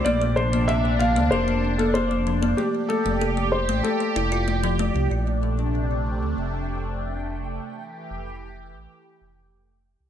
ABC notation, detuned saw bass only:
X:1
M:4/4
L:1/16
Q:1/4=95
K:Bblyd
V:1 name="Detuned saw bass" clef=bass
B,,,6- B,,, D,, F,,,8 | z3 F,,,4 A,,, z2 F,,,2 F,,,3 C,, | B,,,6- B,,, D,, F,,,8 | z3 F,,,4 A,,, z2 F,,,2 F,,,3 C,, |]